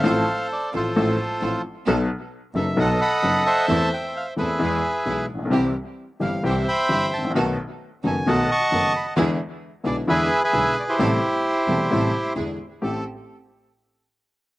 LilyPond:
<<
  \new Staff \with { instrumentName = "Bandoneon" } { \time 4/4 \key a \minor \tempo 4 = 132 << { f''4 d''8 c''2 r8 | r4. e''8 fis''8 b''4 a''8~ | a''8 g''8 f''8 e''2 r8 | r4. f''8 g''8 b''4 a''8 |
r4. gis''8 a''8 cis'''4 b''8 | r4. d''8 e''8. e''8. d''16 c''16~ | c''2. r4 | a'8 r2. r8 | } \\ { <a' c''>4. <f' a'>2 r8 | r2 <a' dis''>8 <dis'' fis''>4 <c'' e''>8~ | <c'' e''>4. <gis' b'>2 r8 | r2 <c'' e''>8 <e'' g''>4. |
r2 <dis'' fis''>8 <fis'' a''>4. | r2 <gis' b'>8. <gis' b'>4 <e' g'>16~ | <e' g'>2. r4 | r1 | } >> }
  \new Staff \with { instrumentName = "String section" } { \time 4/4 \key a \minor <c' f' a'>8 r4 <c' f' a'>8 <c' f' a'>8 r8 <c' f' a'>8 r8 | <b dis' a'>8 r4 <b dis' a'>8 <b dis' a'>8 r8 <b dis' a'>8 r8 | <c' e' a'>8 r4 <c' e' a'>8 <b e' gis'>8 r8 <b e' gis'>8 r8 | <c' e' g'>8 r4 <c' e' g'>8 <c' e' g'>8 r8 <c' e' g'>8 r8 |
<b dis' a'>8 r4 <b dis' a'>8 <b dis' a'>8 r8 <b dis' a'>8 r8 | <d' e' gis'>8 r4 <d' e' gis'>8 <d' e' gis'>8 r8 <d' e' gis'>8 r8 | <c' g' a'>8 r4 <c' g' a'>8 <c' g' a'>8 r8 <d' e' gis'>8 r8 | <c' g' a'>8 r2. r8 | }
  \new Staff \with { instrumentName = "Upright piano" } { \clef bass \time 4/4 \key a \minor <a,, a, f a c' a'>8 r4 <a,, a, f a c' a'>8 <a,, a, f a c' a'>8 r8 <a,, a, f a c' a'>8 r8 | <b,, b, fis b dis' a'>8 r4 <fis,, fis, fis b dis' a'>8 <b,, b, fis b dis' a'>8 r8 <fis,, fis, fis b dis' a'>8 r8 | <e, e a c' a'>8 r4 <e, e a c' a'>8 <e, e gis b gis'>8 r8 <b,, b, e gis b gis'>8 r32 a,,32 bes,,32 b,,32 | <c, c e g c' g'>8 r4 <g,, g, e g c' g'>8 <c, c e g c' g'>8 r8 <g,, g, e g c' g'>8 r32 gis,,32 a,,32 bes,,32 |
<b,, b, dis a b fis'>8 r4 <fis,, fis, dis a b fis'>8 <b,, b, dis a b fis'>8 r8 <fis,, fis, dis a b fis'>8 r8 | <e, d e gis b e'>8 r4 <b,, b, d gis b e'>8 <e, d e gis b e'>8 r8 <b,, b, d gis b e'>8 r8 | <a,, a, c g a e'>8 r4 <e,, e, c g a e'>8 <a,, a, c g a e'>8 r8 <e, d e gis b e'>8 r8 | <a,, a c' g'>8 r2. r8 | }
  \new Staff \with { instrumentName = "Double bass" } { \clef bass \time 4/4 \key a \minor a,,8 r4 a,,8 a,,8 r8 a,,8 r8 | b,,8 r4 fis,,8 b,,8 r8 fis,,8 r8 | e,8 r4 e,8 e,8 r8 b,,8 bes,,8 | c,8 r4 g,,8 c,8 r8 g,,8 a,,8 |
b,,8 r4 fis,,8 b,,8 r8 fis,,8 r8 | e,8 r4 b,,8 e,8 r8 b,,8 r8 | a,,8 r4 e,,8 a,,8 r8 e,8 r8 | a,,8 r2. r8 | }
>>